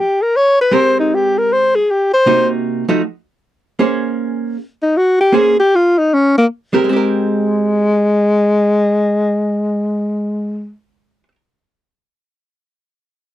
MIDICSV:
0, 0, Header, 1, 3, 480
1, 0, Start_track
1, 0, Key_signature, -4, "major"
1, 0, Tempo, 384862
1, 894, Time_signature, 4, 2, 24, 8
1, 16644, End_track
2, 0, Start_track
2, 0, Title_t, "Alto saxophone"
2, 0, Program_c, 0, 65
2, 0, Note_on_c, 0, 67, 70
2, 274, Note_on_c, 0, 70, 79
2, 292, Note_off_c, 0, 67, 0
2, 452, Note_on_c, 0, 73, 94
2, 471, Note_off_c, 0, 70, 0
2, 739, Note_off_c, 0, 73, 0
2, 761, Note_on_c, 0, 71, 84
2, 923, Note_on_c, 0, 72, 87
2, 942, Note_off_c, 0, 71, 0
2, 1214, Note_off_c, 0, 72, 0
2, 1244, Note_on_c, 0, 63, 61
2, 1432, Note_on_c, 0, 67, 69
2, 1451, Note_off_c, 0, 63, 0
2, 1722, Note_on_c, 0, 70, 76
2, 1741, Note_off_c, 0, 67, 0
2, 1902, Note_on_c, 0, 72, 84
2, 1921, Note_off_c, 0, 70, 0
2, 2186, Note_on_c, 0, 68, 73
2, 2204, Note_off_c, 0, 72, 0
2, 2380, Note_on_c, 0, 67, 68
2, 2399, Note_off_c, 0, 68, 0
2, 2655, Note_off_c, 0, 67, 0
2, 2662, Note_on_c, 0, 72, 96
2, 3097, Note_off_c, 0, 72, 0
2, 6018, Note_on_c, 0, 63, 70
2, 6199, Note_on_c, 0, 66, 73
2, 6218, Note_off_c, 0, 63, 0
2, 6486, Note_off_c, 0, 66, 0
2, 6493, Note_on_c, 0, 67, 88
2, 6681, Note_on_c, 0, 68, 85
2, 6699, Note_off_c, 0, 67, 0
2, 6970, Note_off_c, 0, 68, 0
2, 6979, Note_on_c, 0, 67, 86
2, 7177, Note_on_c, 0, 65, 76
2, 7196, Note_off_c, 0, 67, 0
2, 7463, Note_on_c, 0, 63, 74
2, 7482, Note_off_c, 0, 65, 0
2, 7657, Note_on_c, 0, 61, 79
2, 7675, Note_off_c, 0, 63, 0
2, 7938, Note_off_c, 0, 61, 0
2, 7959, Note_on_c, 0, 58, 84
2, 8050, Note_off_c, 0, 58, 0
2, 8602, Note_on_c, 0, 56, 78
2, 13374, Note_off_c, 0, 56, 0
2, 16644, End_track
3, 0, Start_track
3, 0, Title_t, "Hollow-body jazz guitar"
3, 0, Program_c, 1, 26
3, 891, Note_on_c, 1, 56, 51
3, 901, Note_on_c, 1, 60, 53
3, 905, Note_on_c, 1, 67, 61
3, 910, Note_on_c, 1, 70, 64
3, 2227, Note_off_c, 1, 56, 0
3, 2232, Note_off_c, 1, 60, 0
3, 2234, Note_off_c, 1, 67, 0
3, 2236, Note_off_c, 1, 70, 0
3, 2820, Note_on_c, 1, 48, 47
3, 2828, Note_on_c, 1, 58, 52
3, 2833, Note_on_c, 1, 66, 56
3, 2834, Note_on_c, 1, 63, 56
3, 3540, Note_off_c, 1, 48, 0
3, 3544, Note_off_c, 1, 58, 0
3, 3546, Note_off_c, 1, 66, 0
3, 3547, Note_off_c, 1, 63, 0
3, 3599, Note_on_c, 1, 53, 52
3, 3600, Note_on_c, 1, 57, 55
3, 3606, Note_on_c, 1, 63, 61
3, 3614, Note_on_c, 1, 66, 57
3, 3755, Note_off_c, 1, 53, 0
3, 3755, Note_off_c, 1, 57, 0
3, 3758, Note_off_c, 1, 63, 0
3, 3762, Note_off_c, 1, 66, 0
3, 4729, Note_on_c, 1, 58, 51
3, 4735, Note_on_c, 1, 61, 54
3, 4741, Note_on_c, 1, 68, 54
3, 4744, Note_on_c, 1, 72, 55
3, 5689, Note_off_c, 1, 58, 0
3, 5692, Note_off_c, 1, 61, 0
3, 5695, Note_off_c, 1, 68, 0
3, 5696, Note_off_c, 1, 72, 0
3, 6641, Note_on_c, 1, 58, 55
3, 6652, Note_on_c, 1, 61, 47
3, 6656, Note_on_c, 1, 68, 54
3, 6658, Note_on_c, 1, 72, 55
3, 6920, Note_off_c, 1, 58, 0
3, 6925, Note_off_c, 1, 61, 0
3, 6928, Note_off_c, 1, 68, 0
3, 6928, Note_off_c, 1, 72, 0
3, 8392, Note_on_c, 1, 56, 55
3, 8401, Note_on_c, 1, 60, 58
3, 8407, Note_on_c, 1, 67, 60
3, 8411, Note_on_c, 1, 70, 70
3, 8517, Note_off_c, 1, 56, 0
3, 8532, Note_on_c, 1, 56, 54
3, 8580, Note_off_c, 1, 60, 0
3, 8595, Note_on_c, 1, 60, 61
3, 8625, Note_off_c, 1, 67, 0
3, 8640, Note_on_c, 1, 67, 61
3, 8671, Note_off_c, 1, 70, 0
3, 8686, Note_on_c, 1, 70, 65
3, 14006, Note_off_c, 1, 56, 0
3, 14069, Note_off_c, 1, 60, 0
3, 14114, Note_off_c, 1, 67, 0
3, 14160, Note_off_c, 1, 70, 0
3, 16644, End_track
0, 0, End_of_file